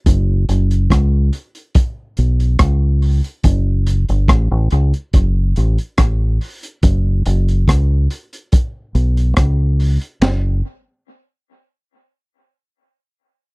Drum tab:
RD |----------------|----------------|----------------|b---------------|
HH |x-xxx-xxx-xxx-ox|x-xxx-xxx-xxx-ox|x-xxx-xxx-xxx-ox|----------------|
SD |----r-------r---|----r-------r---|----r-------r---|o---------------|
BD |o---o---o---o---|o---o---o---o---|o---o---o---o---|----------------|